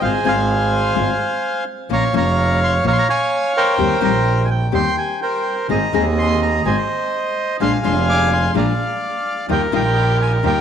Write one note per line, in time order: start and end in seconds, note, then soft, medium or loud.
0.01 0.22 G#1 medium
0.01 0.18 G#3 medium
0.01 0.19 C4 medium
0.01 0.19 F4 medium
0.01 0.93 G#4 medium
0.01 0.27 C5 medium
0.01 0.12 F5 medium
0.24 0.93 G#1 medium
0.24 0.34 G#3 medium
0.24 0.34 C4 medium
0.24 0.34 F4 medium
0.24 1.63 G#5 medium
0.28 1.64 C5 medium
0.28 1.64 F5 medium
0.95 1.16 G#1 medium
0.95 1.13 G#3 medium
0.95 1.13 C4 medium
0.95 1.13 F4 medium
1.89 2.10 A#1 medium
1.89 2.07 F3 medium
1.89 2.07 A#3 medium
1.89 2.07 C#4 medium
1.89 2.07 F4 medium
1.89 2.15 C#5 medium
1.89 2.15 F5 medium
1.94 2.04 A#5 medium
2.13 2.81 F1 loud
2.13 2.22 F3 medium
2.13 2.23 A#3 medium
2.13 2.23 C#4 medium
2.13 2.23 F4 medium
2.13 2.85 C#5 medium
2.13 2.86 F5 medium
2.18 2.60 A#5 medium
2.64 2.74 C6 loud
2.84 3.04 A#1 medium
2.84 3.01 F3 medium
2.84 3.01 A#3 medium
2.84 3.01 C#4 medium
2.84 3.01 F4 medium
2.84 3.08 C#5 medium
2.84 3.08 F5 medium
2.88 2.92 A#5 medium
2.93 2.97 C6 medium
2.99 3.08 A#5 loud
3.09 3.75 C#5 medium
3.09 3.75 F5 medium
3.09 3.53 G#5 medium
3.57 4.46 A#4 medium
3.57 4.46 C5 medium
3.57 4.00 G5 medium
3.78 3.98 D#2 medium
3.78 3.95 D#3 medium
3.78 3.95 G3 medium
3.78 3.95 C4 medium
3.78 3.95 G4 medium
4.01 4.69 A#1 loud
4.01 4.10 D#3 medium
4.01 4.10 G3 medium
4.01 4.10 C4 medium
4.01 4.11 G4 loud
4.01 4.49 G5 medium
4.01 4.41 A#5 medium
4.45 4.50 G#5 soft
4.50 4.72 G5 medium
4.72 4.93 D#2 medium
4.72 4.90 D#3 medium
4.72 4.90 G3 medium
4.72 4.90 C4 medium
4.72 4.90 G4 medium
4.72 5.20 G5 medium
4.72 4.96 C6 medium
4.98 5.20 G#5 medium
5.22 5.67 A#4 soft
5.22 5.67 C5 soft
5.22 5.55 G5 medium
5.69 5.90 G#1 medium
5.69 5.86 D#3 medium
5.69 5.87 G#3 medium
5.69 5.90 A#3 medium
5.69 5.87 C4 medium
5.69 5.90 C4 soft
5.69 5.90 G#4 medium
5.69 5.87 G#4 medium
5.69 6.62 D#5 medium
5.69 5.94 A#5 medium
5.93 6.62 D#2 medium
5.93 6.03 D#3 medium
5.93 6.03 G#3 medium
5.93 6.62 A#3 medium
5.93 6.62 C4 medium
5.93 6.03 C4 medium
5.93 6.62 G#4 medium
5.93 6.03 G#4 medium
5.93 6.06 A#5 medium
6.19 6.41 C6 medium
6.42 6.67 A#5 medium
6.65 6.86 G#1 medium
6.65 6.82 D#3 medium
6.65 6.82 G#3 medium
6.65 6.85 A#3 soft
6.65 6.85 C4 soft
6.65 6.82 C4 medium
6.65 6.86 G#4 medium
6.65 6.83 G#4 medium
6.65 7.57 C5 soft
6.65 7.57 D#5 soft
6.65 6.77 G#5 medium
7.60 7.80 A#1 medium
7.60 7.77 F3 medium
7.60 7.77 G#3 medium
7.60 7.80 A#3 soft
7.60 7.80 D4 soft
7.60 7.77 D4 medium
7.60 7.77 F4 medium
7.60 7.80 G#4 medium
7.60 8.51 F5 medium
7.60 8.51 G#5 medium
7.60 7.72 C6 medium
7.83 8.51 F1 medium
7.83 7.93 F3 medium
7.83 7.93 G#3 medium
7.83 8.51 A#3 medium
7.83 8.51 D4 medium
7.83 7.93 D4 medium
7.83 7.93 F4 medium
7.83 8.51 G#4 medium
7.83 8.07 C6 medium
8.09 8.33 D6 loud
8.33 8.54 C6 medium
8.54 8.75 A#1 medium
8.54 8.71 F3 medium
8.54 8.72 G#3 medium
8.54 8.75 A#3 soft
8.54 8.75 D4 soft
8.54 8.72 D4 medium
8.54 8.72 F4 medium
8.54 8.75 G#4 medium
8.54 9.46 D5 medium
8.54 9.46 F5 medium
8.54 8.67 A#5 medium
9.49 9.69 D#2 medium
9.49 9.66 D#3 medium
9.49 9.66 G3 medium
9.49 9.69 D#4 medium
9.49 9.66 D#4 medium
9.49 9.69 F4 soft
9.49 9.66 F4 medium
9.49 9.69 G4 medium
9.49 9.74 A#4 medium
9.49 9.62 G5 medium
9.72 10.40 A#1 loud
9.72 9.81 D#3 medium
9.72 9.81 G3 medium
9.72 10.40 D#4 medium
9.72 9.82 D#4 medium
9.72 10.40 F4 medium
9.72 9.82 F4 loud
9.72 10.40 G4 medium
9.72 10.45 A#4 medium
9.72 10.18 G5 medium
10.22 10.32 G#5 medium
10.43 10.61 D#2 medium
10.43 10.60 D#3 medium
10.43 10.60 G3 medium
10.43 10.61 D#4 soft
10.43 10.60 D#4 medium
10.43 10.61 F4 soft
10.43 10.61 F4 medium
10.43 10.61 G4 medium
10.43 10.61 A#4 medium
10.43 10.61 G5 medium